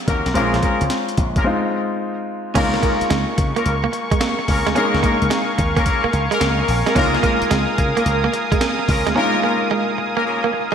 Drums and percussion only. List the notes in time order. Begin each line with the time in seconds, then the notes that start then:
0.08 kick, closed hi-hat
0.26 snare, closed hi-hat
0.35 closed hi-hat
0.54 snare, closed hi-hat
0.63 kick, closed hi-hat
0.81 closed hi-hat
0.90 snare, closed hi-hat
1.09 closed hi-hat
1.17 kick, closed hi-hat
1.36 kick, closed hi-hat
2.55 kick, closed hi-hat, crash
2.74 snare
2.83 kick, closed hi-hat
3.01 closed hi-hat
3.11 snare, closed hi-hat
3.38 kick, closed hi-hat
3.57 closed hi-hat
3.66 closed hi-hat
3.93 closed hi-hat
4.11 kick, closed hi-hat
4.21 snare, closed hi-hat
4.48 kick, open hi-hat
4.67 snare, closed hi-hat
4.76 closed hi-hat
4.94 snare
5.03 kick, closed hi-hat
5.22 closed hi-hat
5.31 snare, closed hi-hat
5.58 kick, closed hi-hat
5.77 kick, closed hi-hat
5.86 kick, closed hi-hat
6.13 closed hi-hat
6.32 closed hi-hat
6.41 snare, closed hi-hat
6.68 open hi-hat
6.87 snare, closed hi-hat
6.96 kick, closed hi-hat
7.14 snare
7.23 kick, closed hi-hat
7.42 closed hi-hat
7.51 snare, closed hi-hat
7.78 kick, closed hi-hat
7.97 closed hi-hat
8.06 closed hi-hat
8.34 closed hi-hat
8.52 kick, closed hi-hat
8.61 snare, closed hi-hat
8.88 kick, open hi-hat
9.07 snare, closed hi-hat